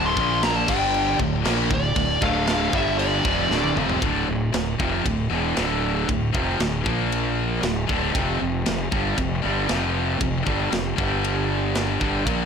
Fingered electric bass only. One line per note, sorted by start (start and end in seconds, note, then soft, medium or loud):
0.00 0.15 D1 loud
0.17 0.64 A#1 loud
0.69 1.16 G1 medium
1.19 1.43 D1 medium
1.46 1.69 A#1 loud
1.70 1.94 D1 medium
1.96 2.20 D1 medium
2.22 2.70 D1 loud
2.73 3.21 G1 loud
3.25 3.49 F1 medium
3.51 3.75 D1 loud
3.77 4.00 F1 medium
4.02 4.26 D1 medium
4.29 4.52 D1 medium
4.54 4.78 D1 medium
4.79 5.03 F1 medium
5.05 5.29 D1 medium
5.31 5.55 E1 medium
5.58 6.05 D1 medium
6.09 6.33 D1 medium
6.34 6.58 F1 loud
6.60 6.84 D1 medium
6.86 7.59 A#1 medium
7.64 7.87 D1 medium
7.89 8.13 D1 medium
8.15 8.39 F1 medium
8.42 8.65 F1 medium
8.68 8.91 F1 medium
8.92 9.16 G1 medium
9.18 9.42 F1 medium
9.45 9.68 G1 medium
9.71 10.18 F1 medium
10.21 10.45 F1 medium
10.47 10.71 G1 loud
10.73 10.96 F1 medium
10.98 11.97 G1 medium
12.01 12.25 G1 medium
12.26 12.45 A#1 medium